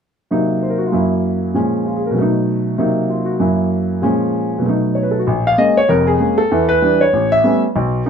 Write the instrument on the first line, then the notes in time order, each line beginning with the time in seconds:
grand piano
0.31 C3 F#3 A#3 D#4
0.63 C5
0.70 A#4
0.78 F#4
0.86 F4
0.92 F#2 F#3 A#3 E4
1.54 A#2 F3 G#3 C#4
1.86 F4
1.97 G#4
2.06 A#4
2.11 B2 F#3
2.18 A3 D#4
2.78 C3 F#3 A#3 D#4
3.10 F4
3.25 F#4
3.40 F#2 F#3 A#3 E4
4.02 A#2 F3 G#3 C#4
4.58 B2 F#3
4.66 A3 D#4
4.95 C#5
5.03 B4
5.11 A4
5.19 F#4
5.27 A#1
5.47 F5
5.58 G#3 A#3 C#4 D#5
5.77 C#5
5.89 F1 F2 A#4
6.07 G#4
6.20 G#3 A#3 C#4
6.38 A4
6.51 E2 E3
6.69 B4
6.82 E3 G3 D4
7.01 C#5
7.13 A1
7.32 E5
7.44 G3 A3 B3 C#4
7.76 B1
8.06 A#3 B3 C#4 D#4